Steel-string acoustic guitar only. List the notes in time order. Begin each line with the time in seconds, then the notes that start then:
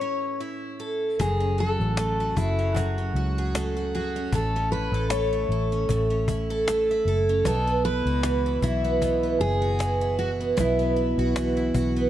Already playing: C#5
1.21 G#4
1.60 A4
2.37 E4
2.75 F#4
3.95 F#4
4.35 A4
4.72 B4
5.10 C#5
7.47 A4
7.85 B4
8.63 E4
9.41 G#4
10.19 F#4
10.60 E4